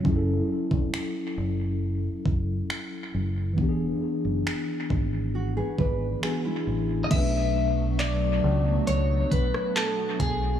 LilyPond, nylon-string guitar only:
\new Staff \with { instrumentName = "Nylon-string guitar" } { \time 4/4 \key b \dorian \tempo 4 = 68 r1 | r2 fis'16 <b gis'>16 <d' b'>8 <b gis'>16 <gis e'>8. | r1 | }